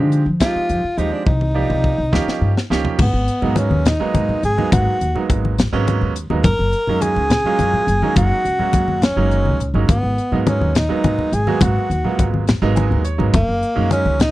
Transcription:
Already playing: D3 F3 G#3 C4 D#4 G4
0.12 closed hi-hat
0.26 F3
0.40 F3 G#3 C4 D#4 F4 G4, kick, snare, closed hi-hat
0.55 muted upright bass stroke
0.69 F2, closed hi-hat
0.84 muted upright bass stroke
0.97 D#2 F3 G#3 C4 D#4 G4, closed hi-hat
1.12 D4
1.26 C2 D#4, kick
1.41 high tom
1.54 F3 A#3 D#4 G4 D5
1.70 C2, mid tom
1.84 kick
1.98 C2
2.12 D#2 F3 A#3 C#4 D#4 G4, kick, snare
2.27 muted upright bass stroke, snare
2.41 G2
2.57 snare
2.70 C#2 F3 A#3 C#4 D#4 G4, snare
2.85 floor tom
2.99 G#1 B3, kick, crash, muted conga, low conga
3.13 G#1
3.28 closed hi-hat
3.42 G#2 F#3 G#3 A#3 B3 D#4, low conga
3.56 C#4, closed hi-hat, muted conga
3.71 D#2, high conga
3.85 D#4, snare, closed hi-hat, low conga
4.00 F#3 G#3 A#3 B3 D#4, muted upright bass stroke
4.14 G#2, closed hi-hat, muted conga, low conga
4.29 muted upright bass stroke, low conga
4.43 G#1 G#4, closed hi-hat
4.57 F#3 G#3 A#3 B3 D#4, high conga, low conga
4.72 G#1 F#4, kick, closed hi-hat, muted conga, low conga
5.01 D#2, closed hi-hat
5.15 F#3 G#3 A#3 B3 D#4, muted upright bass stroke, low conga
5.30 G#1, kick, closed hi-hat, muted conga
5.45 high conga
5.58 snare, closed hi-hat, low conga
5.73 G#1 F#3 G#3 A#3 B3 C#4
5.87 closed hi-hat, muted conga, low conga
6.01 D#2, low conga
6.16 closed hi-hat
6.30 D#2 F#3 G#3 A#3 B3 D#4, high conga, low conga
6.44 F#1 A#4, kick, closed hi-hat, muted conga, low conga
6.59 F#1
6.73 closed hi-hat
6.87 F#2 F#3 G#3 A#3 C#4 D#4, low conga
7.01 G#4, closed hi-hat, muted conga
7.16 C#2, high conga
7.30 snare, closed hi-hat, low conga
7.44 F#3 G#3 A#3 C#4 F4, muted upright bass stroke
7.59 F#2, closed hi-hat, muted conga, low conga
7.73 muted upright bass stroke, low conga
7.87 F#1, closed hi-hat, low conga
8.02 F#3 G#3 A#3 C#4 D#4, high conga, low conga
8.16 F#1 F#4, kick, closed hi-hat, muted conga, low conga
8.45 C#2, closed hi-hat
8.59 F#3 G#3 A#3 C#4 F#4, muted upright bass stroke, low conga
8.73 F#1, kick, closed hi-hat, muted conga, low conga
8.88 high conga
9.02 C#4, snare, closed hi-hat, low conga
9.16 F#1 F#3 G#3 A#3 C#4 D#4
9.31 closed hi-hat, high conga
9.45 C#2, high conga
9.60 closed hi-hat, low conga
9.74 G1 F#3 G#3 A#3 C#4 D#4, low conga
9.89 G#1 B3, kick, closed hi-hat, muted conga, low conga
10.03 G#1
10.18 closed hi-hat
10.32 G#2 F#3 G#3 A#3 B3 D#4, low conga
10.47 C#4, closed hi-hat, muted conga
10.61 D#2, high conga
10.75 D#4, snare, closed hi-hat, low conga
10.89 F#3 G#3 A#3 B3 D#4, muted upright bass stroke
11.04 G#2, closed hi-hat, muted conga, low conga
11.19 muted upright bass stroke, low conga
11.32 G#1 G#4, closed hi-hat
11.47 F#3 G#3 A#3 B3 F#4, high conga, low conga
11.61 G#1 F#4, kick, closed hi-hat, muted conga, low conga
11.90 D#2, closed hi-hat
12.04 F#3 G#3 A#3 B3 F4, muted upright bass stroke, low conga
12.19 G#1, kick, closed hi-hat, muted conga
12.34 high conga
12.48 snare, closed hi-hat, low conga
12.62 G#1 F#3 G#3 A#3 B3 D#4
12.76 G#5, closed hi-hat, muted conga, low conga
12.91 D#2, low conga
13.04 C#5, closed hi-hat, low conga
13.18 G#1 F#3 G#3 A#3 B3 D#4, high conga, low conga
13.34 F#1 A#3, kick, closed hi-hat, muted conga, low conga
13.48 F#1
13.63 closed hi-hat
13.75 F#2 F#3 G#3 A#3 C#4 D#4, low conga
13.91 C#4, closed hi-hat, muted conga
14.05 C#2, high conga
14.19 D#4, snare, closed hi-hat, low conga

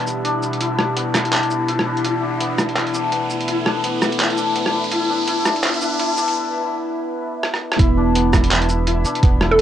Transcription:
Already playing: B3 D4 E4 G4 E5, riser
0.07 E4, shaker
0.25 D4, closed hi-hat
0.43 E4, shaker
0.53 closed hi-hat
0.61 E4, closed hi-hat
0.79 D4, cross-stick
0.97 B3, closed hi-hat
1.15 E4, cross-stick, clap, shaker
1.25 closed hi-hat
1.32 D4, clap, closed hi-hat
1.43 closed hi-hat
1.50 E4, shaker
1.68 E4, closed hi-hat
1.79 cross-stick
1.86 D4
1.97 closed hi-hat
2.04 E4, closed hi-hat
2.22 D4
2.40 B3, closed hi-hat
2.57 E4 A4, cross-stick, shaker
2.69 closed hi-hat
2.76 E4, clap, closed hi-hat
2.87 closed hi-hat
2.94 D4, shaker
3.12 B3, closed hi-hat
3.30 E4, shaker
3.41 closed hi-hat
3.48 E4, closed hi-hat
3.66 D4, cross-stick
3.84 B3, closed hi-hat
4.02 E4, cross-stick, shaker
4.12 closed hi-hat
4.20 E4, clap, closed hi-hat
4.30 closed hi-hat
4.38 D4, shaker
4.56 B3, closed hi-hat
4.66 cross-stick
4.74 E4
4.84 closed hi-hat
4.92 E4, closed hi-hat
5.10 D4
5.21 B4
5.28 E4, closed hi-hat
5.46 D4, cross-stick, shaker
5.56 closed hi-hat
5.64 E4, clap, closed hi-hat
5.74 closed hi-hat
5.82 D4, shaker
5.99 E4, closed hi-hat
6.17 D4, shaker
6.28 closed hi-hat
7.43 cross-stick
7.54 cross-stick
7.72 cross-stick
7.79 E1 B3 E4, kick, closed hi-hat
7.97 D4
8.15 B3, closed hi-hat
8.33 E4, kick, cross-stick, shaker
8.44 closed hi-hat
8.51 E5, clap, closed hi-hat
8.62 closed hi-hat
8.67 E4 G4, shaker
8.87 E4, closed hi-hat
9.05 D4, shaker
9.15 closed hi-hat
9.23 E1 B3, kick, closed hi-hat
9.41 E4, cross-stick
9.51 A4

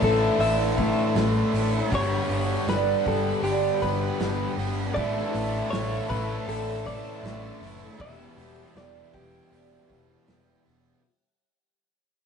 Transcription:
Already playing: A2 D3 E3 A3 D4 A4 E5 A5
0.01 A1 A3 D4 E4 A4, kick, open hi-hat
0.38 A1 A2 D3 A3 D4 E4 E5, open hi-hat
0.77 E3 A3 D4 E4, kick, open hi-hat
1.15 A1 A2 D3 E3 A3 D4 E4 A4, snare, open hi-hat
1.53 A1 A3 D4 E4, open hi-hat
1.57 E3
1.90 G1 G2 D3 G3 B3 D4 G4 F#5 B5, kick, open hi-hat
1.95 G3 G4 C#5
2.29 G1 D3 G3 B3 D4 G4, open hi-hat
2.33 G3
2.67 G1 G2 D3 G3 B3 D4 B4, snare, open hi-hat
2.71 G3 G4
3.06 G1 G3 B3 D4 G4 A4, kick, open hi-hat
3.42 G1 G2 D3 G3 B3 G4, open hi-hat
3.46 D4 G4
3.81 G1 D3 G3 D4 G4 B4, kick, open hi-hat
3.85 G3 B3
4.18 G1 G2 D3 G3 B3 D4 G4, snare, open hi-hat
4.57 G1 D3 G3 B3 D4 G4, open hi-hat
4.94 A1 A2 D3 E3 A3 D4 E4 A4 D5 E5 A5, kick, open hi-hat
4.99 A3
5.32 A1 E3 A3 D4 E4, open hi-hat
5.70 A1 A2 D3 E3 A3 D4 E4 C#5, snare, open hi-hat
6.09 A1 A3 D4 E4 A4 B4, kick, open hi-hat
6.46 A1 A2 D3 A3 D4 E4 A4, open hi-hat
6.84 A3 D4 E4 D5, kick, open hi-hat
6.89 E3
7.22 A1 A2 D3 E3 A3 D4 E4 A4, snare, open hi-hat
7.27 A3
7.60 F#1 E3 A3 D4 E4, open hi-hat
7.98 E1 E2 B2 E3 G3 B3 G4 E5, kick, open hi-hat
8.03 E4
8.36 E1 B2 E3 G3 B3 E4, open hi-hat
8.41 E3
8.73 E1 E2 B2 E3 G3 D4, snare, open hi-hat
8.78 B3 E4 D5
9.12 E1 E3 G3 B3 E4 G4, kick, open hi-hat
9.50 E1 E2 B2 E3 G3 B3 D4 E4, open hi-hat
9.88 E1 B2 E3 G3 B3 E4, kick, open hi-hat
10.25 E1 E2 B2 E3 G3 B3 E4 G4, snare, open hi-hat
10.29 E3
10.64 E1 B2 E3 G3 B3 E4, open hi-hat

